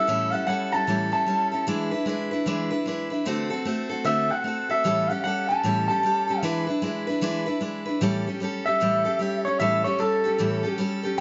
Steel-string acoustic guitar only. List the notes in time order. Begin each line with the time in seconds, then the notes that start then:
0.07 A2 E3 G3 C#4 E4 A4
0.32 G3 C#4 E4 A4
0.47 G3 C#4 E4 A4
0.72 G3 C#4 E4 A4
0.87 A2 E3 G3 C#4 E4 A4
1.12 G3 C#4 E4 A4
1.26 G3 C#4 E4 A4
1.52 G3 C#4 E4 A4
1.67 E3 G#3 D4 E4 B4
1.91 D4 E4 B4
2.06 G#3 D4 E4 B4
2.31 D4 E4 B4
2.46 E3 G#3 D4 E4 B4
2.71 D4 E4 B4
2.86 G#3 D4 E4 B4
3.10 D4 E4 B4
3.25 D3 A3 C4 F#4 A4
3.50 C4 F#4 A4
3.65 A3 C4 F#4 A4
3.89 C4 F#4 A4
4.05 D3 A3 C4 F#4 A4
4.29 C4 F#4 A4
4.44 A3 C4 F#4 A4
4.69 C4 F#4 A4
4.84 A2 E3 G3 C#4 G4 A4
5.10 G3 C#4 G4 A4
5.24 G3 C#4 G4 A4
5.49 G3 C#4 G4 A4
5.63 A2 E3 G3 C#4 G4 A4
5.88 G3 C#4 G4 A4
6.03 G3 C#4 G4 A4
6.27 G3 C#4 G4 A4
6.43 E3 G#3 D4 E4 B4
6.67 D4 E4 B4
6.82 G#3 D4 E4 B4
7.07 D4 E4 B4
7.21 E3 G#3 D4 E4 B4
7.46 D4 E4 B4
7.61 G#3 D4 E4 B4
7.86 D4 E4 B4
8.01 A2 E3 G3 C#4 G4 A4
8.26 G3 C#4 G4 A4
8.40 G3 C#4 G4 A4
8.65 G3 C#4 G4 A4
8.80 A2 E3 G3 C#4 G4 A4
9.05 G3 C#4 G4 A4
9.19 G3 C#4 G4 A4
9.45 G3 C#4 G4 A4
9.60 A2 E3 G3 C#4 G4 A4
9.84 G3 C#4 G4 A4
9.99 G3 C#4 G4 A4
10.24 G3 C#4 G4 A4
10.38 A2 E3 G3 C#4 G4 A4
10.63 G3 C#4 G4 A4
10.78 G3 C#4 G4 A4
11.03 G3 C#4 G4 A4